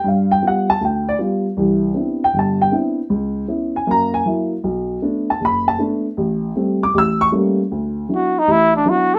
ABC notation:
X:1
M:4/4
L:1/8
Q:"Swing" 1/4=156
K:Ador
V:1 name="Trumpet"
z8 | z8 | z8 | z8 |
z8 | [K:D] z2 F _E =E D F A |]
V:2 name="Upright piano"
=f g ^f a g d z2 | z3 g a g z2 | z3 ^g ^a _a z2 | z3 a b a z2 |
z3 d' e' ^c' z2 | [K:D] z8 |]
V:3 name="Upright piano"
G,,2 [G,B,=F] z D,,2 [G,B,F] z | [C,,E,]2 [B,CDE] z G,,,2 [B,CDE] z | ^C,,2 [B,^CE] z [F,,^A,]2 [F,A,E] z | B,,,2 [A,B,D] z F,,,2 [A,B,D] z |
A,,,2 [G,A,C] z A,,,2 [G,A,_B,^C] z | [K:D] D,,2 [F,B,DE] z A,,,2 [F,B,DE] z |]